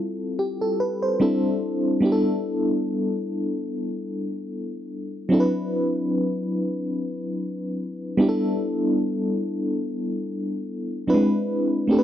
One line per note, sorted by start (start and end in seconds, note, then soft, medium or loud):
0.00 1.15 G3 medium
0.00 1.16 C4 medium
0.00 1.16 E4 medium
0.00 1.17 F4 medium
0.00 0.36 A4 medium
0.39 0.60 G4 medium
0.61 0.79 A4 medium
0.80 1.01 B4 medium
1.03 1.41 C5 medium
1.20 1.99 G3 medium
1.20 2.03 C4 medium
1.20 2.02 D4 medium
1.20 2.03 E4 medium
1.20 2.03 A4 medium
2.00 5.26 G3 medium
2.00 5.27 B3 medium
2.00 5.27 D4 medium
2.05 5.28 E4 medium
2.05 2.11 G4 medium
2.12 5.32 A4 medium
5.29 8.14 F#3 medium
5.29 8.14 C4 medium
5.29 8.15 D4 medium
5.29 8.15 E4 medium
5.34 5.40 A4 medium
5.40 8.19 B4 medium
8.17 11.02 G3 medium
8.17 11.02 B3 medium
8.17 11.03 D4 medium
8.17 11.04 E4 medium
8.22 8.28 G4 medium
8.29 11.07 A4 medium
11.07 11.14 F#3 medium
11.07 11.87 C4 medium
11.07 11.89 D4 medium
11.07 11.90 E4 medium
11.07 11.90 B4 medium
11.14 11.92 G#3 medium
11.88 12.04 A3 medium
11.88 12.04 C4 medium
11.88 12.04 D4 medium
11.88 12.04 G4 medium
11.92 11.98 A4 medium
11.98 12.04 B4 medium